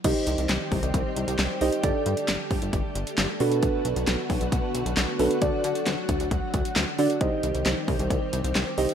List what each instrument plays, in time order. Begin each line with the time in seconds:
0.04 analog synth bass C2, string machine D#3 G3 C4 G4, synth keys D#4 G4 C5 D#5, kick, closed hi-hat, crash
0.27 analog synth bass C2, closed hi-hat
0.38 analog synth bass C2, closed hi-hat
0.49 analog synth bass C2, snare, clap, closed hi-hat
0.72 analog synth bass C2, kick, open hi-hat
0.83 analog synth bass C2, closed hi-hat
0.94 analog synth bass C2, kick, closed hi-hat
1.16 analog synth bass C2, closed hi-hat
1.27 analog synth bass C2, closed hi-hat
1.39 analog synth bass C2, snare, clap, closed hi-hat
1.61 analog synth bass C2, synth keys D#4 G4 C5 D#5, open hi-hat
1.72 closed hi-hat
1.83 analog synth bass G1, string machine D3 A3, synth keys D4 G4 A4 D5, kick, closed hi-hat
2.06 analog synth bass G2, closed hi-hat
2.17 closed hi-hat
2.28 analog synth bass G1, snare, clap, closed hi-hat
2.51 analog synth bass G1, kick, open hi-hat
2.62 analog synth bass G1, closed hi-hat
2.73 analog synth bass G1, kick, closed hi-hat
2.95 analog synth bass G1, closed hi-hat
3.07 closed hi-hat
3.18 analog synth bass G1, snare, clap, closed hi-hat
3.40 analog synth bass B2, string machine B3 F#4, synth keys D4 F#4 A4 B4, open hi-hat
3.52 closed hi-hat
3.63 kick, closed hi-hat
3.85 analog synth bass B1, closed hi-hat
3.96 analog synth bass B1, closed hi-hat
4.07 analog synth bass B1, snare, clap, closed hi-hat
4.30 analog synth bass B1, kick, open hi-hat
4.41 analog synth bass B1, closed hi-hat
4.52 analog synth bass B1, kick, closed hi-hat
4.75 analog synth bass B1, closed hi-hat
4.86 analog synth bass B1, closed hi-hat
4.97 analog synth bass B1, snare, clap, closed hi-hat
5.19 analog synth bass B1, synth keys D4 F#4 A4 B4, open hi-hat
5.31 closed hi-hat
5.42 analog synth bass D2, string machine F#3, synth keys D4 F#4 A4 D5, kick, closed hi-hat
5.64 analog synth bass D3, closed hi-hat
5.75 closed hi-hat
5.86 analog synth bass D2, snare, clap, closed hi-hat
6.09 analog synth bass D2, kick, closed hi-hat
6.20 analog synth bass D2, closed hi-hat
6.31 analog synth bass D2, kick, closed hi-hat
6.54 analog synth bass D2, kick, closed hi-hat
6.65 closed hi-hat
6.76 analog synth bass D2, snare, clap, closed hi-hat
6.99 analog synth bass D3, synth keys D4 F#4 A4 D5, open hi-hat
7.10 closed hi-hat
7.21 analog synth bass C2, string machine D#3 G3 C4 G4, synth keys D#4 G4 C5 D#5, kick, closed hi-hat
7.43 analog synth bass C2, closed hi-hat
7.54 analog synth bass C2, closed hi-hat
7.66 analog synth bass C2, snare, clap, closed hi-hat
7.88 analog synth bass C2, kick, open hi-hat
7.99 analog synth bass C2, closed hi-hat
8.10 analog synth bass C2, kick, closed hi-hat
8.33 analog synth bass C2, closed hi-hat
8.44 analog synth bass C2, closed hi-hat
8.55 analog synth bass C2, snare, clap, closed hi-hat
8.78 analog synth bass C2, synth keys D#4 G4 C5 D#5, open hi-hat
8.89 closed hi-hat